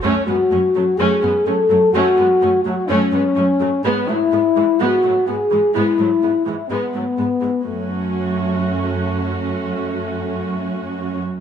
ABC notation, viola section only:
X:1
M:4/4
L:1/8
Q:1/4=126
K:F#m
V:1 name="Viola section"
[A,C] [G,B,] [A,C] [F,A,] [A,C] [G,B,] [A,C] [F,A,] | [A,C] [G,B,] [A,C] [F,A,] [A,C] [G,B,] [A,C] [F,A,] | [G,B,] [F,A,] [G,B,] [E,G,] [G,B,] [F,A,] [G,B,] [E,G,] | [G,B,] [F,A,] [G,B,] [E,G,] [G,B,] [F,A,] [G,B,] [E,G,] |
[CF]8- | [CF]8 |]